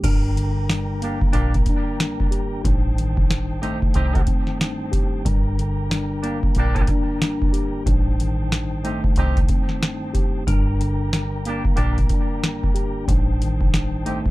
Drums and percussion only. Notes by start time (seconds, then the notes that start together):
0.04 kick, closed hi-hat, crash
0.37 closed hi-hat
0.70 snare, closed hi-hat
1.02 closed hi-hat
1.21 kick
1.33 closed hi-hat
1.54 kick, closed hi-hat
1.66 kick, closed hi-hat
2.00 snare, closed hi-hat
2.20 kick
2.32 closed hi-hat
2.65 kick, closed hi-hat
2.98 closed hi-hat
3.17 kick
3.30 snare, closed hi-hat
3.63 closed hi-hat
3.82 kick
3.94 closed hi-hat
4.15 kick, closed hi-hat
4.27 kick, closed hi-hat
4.47 snare
4.61 snare, closed hi-hat
4.93 kick, closed hi-hat
5.25 kick, closed hi-hat
5.59 closed hi-hat
5.91 snare, closed hi-hat
6.24 closed hi-hat
6.43 kick
6.55 closed hi-hat
6.76 kick, closed hi-hat
6.87 kick, closed hi-hat
7.22 snare, closed hi-hat
7.42 kick
7.54 closed hi-hat
7.86 kick, closed hi-hat
8.20 closed hi-hat
8.52 snare, closed hi-hat
8.85 closed hi-hat
9.04 kick
9.16 closed hi-hat
9.37 kick, closed hi-hat
9.49 kick, closed hi-hat
9.69 snare
9.83 snare, closed hi-hat
10.15 kick, closed hi-hat
10.47 kick, closed hi-hat
10.81 closed hi-hat
11.13 snare, closed hi-hat
11.45 closed hi-hat
11.65 kick
11.77 closed hi-hat
11.98 kick, closed hi-hat
12.09 kick, closed hi-hat
12.44 snare, closed hi-hat
12.64 kick
12.76 closed hi-hat
13.08 kick, closed hi-hat
13.42 closed hi-hat
13.61 kick
13.74 snare, closed hi-hat
14.06 closed hi-hat
14.26 kick